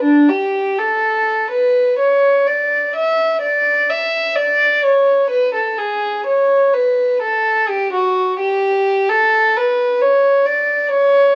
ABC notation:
X:1
M:4/4
L:1/16
Q:1/4=64
K:D
V:1 name="Violin"
D G2 A3 B2 c2 d2 e2 d2 | e2 d2 c2 B A ^G2 c2 B2 A2 | G F2 G3 A2 B2 c2 d2 c2 |]